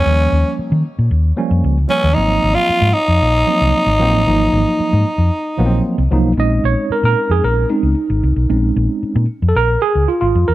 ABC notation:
X:1
M:4/4
L:1/16
Q:1/4=114
K:Bbm
V:1 name="Tenor saxophone"
D4 z8 z2 D2 | E3 F3 E8- E2- | E12 z4 | z16 |
z16 |]
V:2 name="Tine electric piano"
z16 | z16 | z16 | [A,CDE]8- [A,CDE]2 [A,CDE]2 z4 |
[A,CDE]6 z8 z2 |]
V:3 name="Tine electric piano"
[F,=G,B,D]6 z4 [F,G,B,D]3 z [F,G,B,D]2 | [F,G,B,C]6 z4 [F,G,B,C]3 z [F,G,B,C]2 | [F,G,B,E]6 z4 [F,G,B,_C=C]3 z [F,G,B,E]2 | e2 d2 B B2 A B2 z6 |
z6 z3/2 =A/2 B2 _A2 F F2 B |]
V:4 name="Fingered electric bass" clef=bass
E,,2 E,, z2 E, z B,, E,,2 z F,, D,,2 z E,, | A,,,2 A,,, z2 A,, z F,, B,,,2 z C,, z A,,, B,,, =A,,, | A,,,2 A,,, z2 A,, z F,, z2 B,,,2 z C,, C,, _C,, | B,,,2 B,,, z2 B,, z F,, B,,,2 z D,, z A,,, C,, _C,, |
B,,,2 B,,, z2 B,, z F,, B,,,2 z D,, z A,,, F,, =E,, |]